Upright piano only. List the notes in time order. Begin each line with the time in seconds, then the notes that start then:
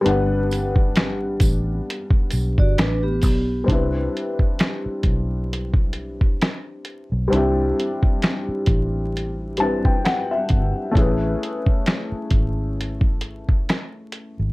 0.01 G3 B3
0.06 D4 F#5
0.10 B4
3.64 G3 C4
3.69 D4 E4
3.73 B4
7.28 G3 C4
7.32 D4 E4
7.37 G4
9.58 G3 C4 D4 E4 A5
9.62 B4
9.85 G5
10.05 F#5
10.31 E5
10.92 A3 C#4
10.96 E4 G#4
11.01 B4